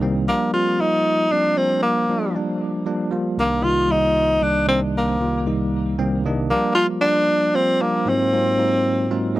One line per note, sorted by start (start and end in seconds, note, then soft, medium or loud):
0.01 0.26 C2 medium
0.01 0.27 D#3 medium
0.01 0.27 G3 medium
0.01 0.27 A#3 medium
0.01 0.27 C4 medium
0.28 0.51 F3 medium
0.28 0.51 G3 medium
0.28 0.51 A#3 medium
0.28 0.52 D4 medium
0.53 0.77 F3 medium
0.53 0.77 G3 medium
0.53 0.77 A#3 medium
0.53 0.77 C4 medium
0.53 0.82 F4 loud
0.79 1.27 F3 medium
0.79 1.27 G3 medium
0.79 1.27 A#3 medium
0.79 1.34 D#4 loud
0.79 1.28 F4 medium
1.31 1.55 F3 medium
1.31 1.55 G3 medium
1.31 1.56 A#3 medium
1.31 1.56 C4 medium
1.31 1.59 D4 medium
1.57 2.05 F3 medium
1.57 2.05 G3 medium
1.57 2.05 A#3 medium
1.57 1.82 C4 medium
1.57 2.06 D4 medium
1.82 2.37 A#3 medium
2.09 2.33 F3 medium
2.09 2.33 G3 medium
2.09 2.33 A#3 medium
2.09 2.33 D4 medium
2.35 2.83 F3 medium
2.35 2.83 G3 medium
2.35 2.83 A#3 medium
2.35 2.83 D4 medium
2.86 3.09 F3 medium
2.86 3.10 G3 medium
2.86 3.11 A#3 medium
2.86 3.10 D4 medium
3.10 3.37 F3 medium
3.10 3.38 G3 medium
3.10 3.38 A#3 medium
3.10 3.38 F4 medium
3.38 3.61 C2 medium
3.38 3.62 D#3 medium
3.38 3.61 G3 medium
3.38 3.63 A#3 medium
3.38 3.65 A#3 medium
3.38 3.63 D4 medium
3.62 3.87 C2 medium
3.62 3.87 D#3 medium
3.62 3.88 G3 medium
3.62 3.88 A#3 medium
3.62 3.88 D#4 medium
3.62 3.93 F4 loud
3.88 4.38 C2 medium
3.88 4.38 D#3 medium
3.88 4.38 G3 medium
3.88 4.38 A#3 medium
3.88 4.45 D#4 loud
3.88 4.38 F4 medium
4.41 4.66 C2 medium
4.41 4.66 D#3 medium
4.41 4.66 G3 medium
4.41 4.66 A#3 medium
4.41 4.66 D4 medium
4.41 4.68 D4 medium
4.67 5.16 C2 medium
4.67 5.16 D#3 medium
4.67 5.16 G3 medium
4.67 5.16 A#3 medium
4.67 4.80 C4 medium
4.67 5.17 D4 medium
4.98 5.50 A#3 medium
5.20 5.45 C2 medium
5.20 5.44 D#3 medium
5.20 5.45 G3 medium
5.20 5.45 A#3 medium
5.20 5.45 F4 medium
5.46 5.95 C2 medium
5.46 5.94 D#3 medium
5.46 5.95 G3 medium
5.46 5.95 A#3 medium
5.46 5.95 D#4 medium
5.98 6.22 C2 medium
5.98 6.23 D#3 medium
5.98 6.23 G3 medium
5.98 6.23 A#3 medium
5.98 6.23 C4 medium
5.98 6.23 G5 medium
6.25 6.50 C2 medium
6.25 6.51 D#3 medium
6.25 6.50 G3 medium
6.25 6.50 A#3 medium
6.25 6.51 D4 medium
6.25 6.49 D#5 medium
6.50 6.75 F3 medium
6.50 6.75 G3 medium
6.50 6.74 A#3 medium
6.50 6.75 A#3 medium
6.50 6.75 D4 medium
6.75 7.01 F3 medium
6.75 7.01 G3 medium
6.75 7.01 A#3 medium
6.75 6.87 F4 loud
6.75 7.01 F4 medium
7.01 7.51 F3 medium
7.01 7.51 G3 medium
7.01 7.51 A#3 medium
7.01 7.56 D4 loud
7.01 7.51 D4 medium
7.54 7.78 F3 medium
7.54 7.78 G3 medium
7.54 7.78 A#3 medium
7.54 7.83 C4 medium
7.54 7.79 F4 medium
7.80 8.06 F3 medium
7.80 8.07 G3 medium
7.80 8.06 A#3 medium
7.80 8.11 A#3 medium
7.80 8.07 D4 medium
8.06 8.30 G#2 medium
8.06 8.30 F#3 medium
8.06 8.31 A#3 medium
8.06 8.31 C4 medium
8.06 9.38 C4 medium
8.06 8.31 D#4 medium
8.06 8.31 F4 medium
8.33 8.57 G#2 medium
8.33 8.57 F#3 medium
8.33 8.57 A#3 medium
8.33 8.57 C4 medium
8.33 8.57 D#4 medium
8.33 8.57 F4 medium
8.58 9.07 G#2 medium
8.58 9.07 F#3 medium
8.58 9.07 A#3 medium
8.58 9.07 C4 medium
8.58 9.07 D#4 medium
8.58 9.07 F4 medium
9.10 9.34 G#2 medium
9.10 9.34 F#3 medium
9.10 9.35 A#3 medium
9.10 9.35 C4 medium
9.10 9.35 D#4 medium
9.10 9.35 F4 medium
9.10 9.35 F5 medium
9.35 9.40 G#2 medium
9.35 9.40 F#3 medium
9.35 9.40 A#3 medium
9.35 9.40 C4 medium
9.35 9.40 D#4 medium
9.35 9.40 D#5 medium